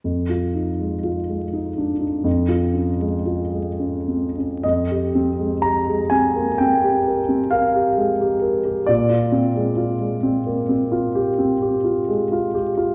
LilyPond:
\new Staff \with { instrumentName = "Grand piano" } { \time 9/8 \key f \dorian \tempo 4. = 42 << { r1 r8 | ees''4 bes''8 aes''8 g''4 f''4. | d''1 r8 | } \\ { f,16 f'16 ees'16 aes16 f'16 aes16 ees'16 d'16 ees'16 f,16 f'16 des'16 aes16 f'16 aes16 des'16 c'16 des'16 | f,16 g'16 c'16 aes16 g'16 aes16 c'16 bes16 c'16 g'16 bes'16 c'16 bes'16 g'16 aes16 g'16 bes'16 g'16 | bes,16 f'16 c'16 aes16 f'16 aes16 c'16 bes16 c'16 f'16 g'16 c'16 g'16 f'16 aes16 f'16 g'16 f'16 | } >> }